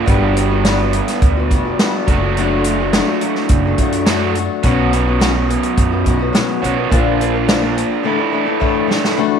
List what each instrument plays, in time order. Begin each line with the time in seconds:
0.06 upright bass G1, overdriven electric guitar G2 D3 G4, steel-string acoustic guitar G3 B3 D4 F#4, kick, closed hi-hat
0.34 steel-string acoustic guitar G3 B3 D4 F#4, closed hi-hat
0.49 steel-string acoustic guitar B3 D4 F#4
0.65 steel-string acoustic guitar G3 B3 D4 F#4, snare, closed hi-hat
0.79 steel-string acoustic guitar B3 D4 F#4
0.93 steel-string acoustic guitar G3 B3 D4, closed hi-hat
1.08 snare, closed hi-hat
1.22 upright bass D2, kick, closed hi-hat
1.37 steel-string acoustic guitar B3 D4 F#4
1.51 upright bass F1, steel-string acoustic guitar G3 B3 D4 F#4, kick, closed hi-hat
1.65 steel-string acoustic guitar B3 D4 F#4
1.79 steel-string acoustic guitar G3 B3 D4 F#4, snare, closed hi-hat
2.08 upright bass F#1, steel-string acoustic guitar F#3 A3 D4 F#4, kick, closed hi-hat
2.22 steel-string acoustic guitar A3 D4 F#4
2.37 steel-string acoustic guitar F#3 A3 D4 F#4, closed hi-hat
2.64 steel-string acoustic guitar F#3 A3 D4, closed hi-hat
2.69 steel-string acoustic guitar F#4
2.80 steel-string acoustic guitar A3 D4 F#4
2.93 steel-string acoustic guitar F#3 A3 D4 F#4, snare, closed hi-hat
3.08 steel-string acoustic guitar A3 D4 F#4
3.21 steel-string acoustic guitar F#3 A3 D4, closed hi-hat
3.25 steel-string acoustic guitar F#4
3.35 snare
3.49 upright bass F#1, kick, closed hi-hat
3.65 steel-string acoustic guitar A3 D4 F#4
3.78 upright bass F#2, steel-string acoustic guitar F#3 A3 D4, kick, closed hi-hat
3.82 steel-string acoustic guitar F#4
3.92 steel-string acoustic guitar D4 F#4, closed hi-hat
3.97 steel-string acoustic guitar A3
4.06 steel-string acoustic guitar F#3 A3 D4, snare, closed hi-hat
4.11 steel-string acoustic guitar F#4
4.35 steel-string acoustic guitar F#3 A3 D4 F#4, closed hi-hat
4.63 upright bass B1, steel-string acoustic guitar B2 F#3 B3 C#4 F#4, kick, closed hi-hat
4.92 steel-string acoustic guitar F#3 B3 C#4 F#4, closed hi-hat
5.05 steel-string acoustic guitar B3 C#4 F#4
5.20 steel-string acoustic guitar B2 F#3 B3 C#4 F#4, snare, closed hi-hat
5.34 steel-string acoustic guitar B3 C#4 F#4
5.48 steel-string acoustic guitar F#3 B3 C#4 F#4, closed hi-hat
5.63 closed hi-hat
5.77 upright bass F#2, kick, closed hi-hat
5.90 steel-string acoustic guitar B3 C#4 F#4
6.04 upright bass B1, steel-string acoustic guitar F#3 B3 C#4 F#4, kick, closed hi-hat
6.19 steel-string acoustic guitar B3 C#4 F#4
6.33 steel-string acoustic guitar B2 F#3 B3 C#4 F#4, snare, closed hi-hat
6.62 upright bass B1, overdriven electric guitar B2, steel-string acoustic guitar F#3 B3 C#4 F#4, closed hi-hat
6.76 steel-string acoustic guitar B3 C#4 F#4
6.90 upright bass A#1, steel-string acoustic guitar A#2 D3 F3 A#3 D4 A#4, overdriven electric guitar F4, kick, closed hi-hat
7.19 steel-string acoustic guitar F3 A#3 D4 A#4, closed hi-hat
7.34 steel-string acoustic guitar F3 A#3 D4 A#4
7.48 steel-string acoustic guitar A#2 D3 F3 A#3 D4 A#4, snare, closed hi-hat
7.61 steel-string acoustic guitar F3 A#3 D4 A#4
7.75 steel-string acoustic guitar F3 A#3 D4 A#4, closed hi-hat
8.03 steel-string acoustic guitar A2 D3 E3 A3 D4 A4, overdriven electric guitar E4
8.18 steel-string acoustic guitar E3 A3 D4 A4
8.31 steel-string acoustic guitar E3 A3 D4 A4
8.45 steel-string acoustic guitar E3 A3 D4 A4
8.60 steel-string acoustic guitar A2 D3 E3 A3 D4 A4, kick
8.87 steel-string acoustic guitar E3 A3 D4 A4, snare
9.02 steel-string acoustic guitar E3 A3 D4 A4, snare
9.17 steel-string acoustic guitar D3 E3 A3 D4 F#4